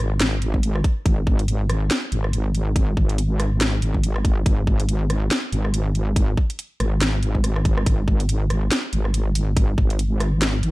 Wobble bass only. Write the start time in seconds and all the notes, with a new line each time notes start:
Already playing: G#1
1.06 G#1
2.12 G#1
2.97 G#1
3.82 G#1
4.46 G#1
5.52 G#1
6.80 G#1
7.86 G#1
8.93 G#1
9.78 G#1
10.63 G#1